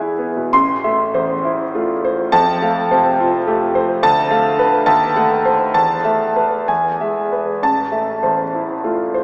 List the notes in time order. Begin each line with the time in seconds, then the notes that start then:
Already playing: E2 B3 G#4 B4 E5 G#5
0.00 E4
0.19 B3
0.37 B2
0.53 A1 C6
0.84 A3 E5
1.14 E2 C5
1.45 E4
1.75 A3 F4
2.05 C5
2.32 F2 A5
2.62 A3 F5
2.91 C3 C5
3.20 F4
3.47 A3 G4
3.75 C5
4.03 D2 A5
4.31 A3 F5
4.59 B4
4.86 D#2 A5
5.16 A3 F#5
5.45 C5
5.74 E2 A5
6.05 A3 E5
6.36 B4
6.68 E2 G#5
7.01 G#3 E5
7.32 B4
7.62 A1 A5
7.92 A3 E5
8.23 E2 C5
8.54 E4
8.84 A3 F4
9.14 C5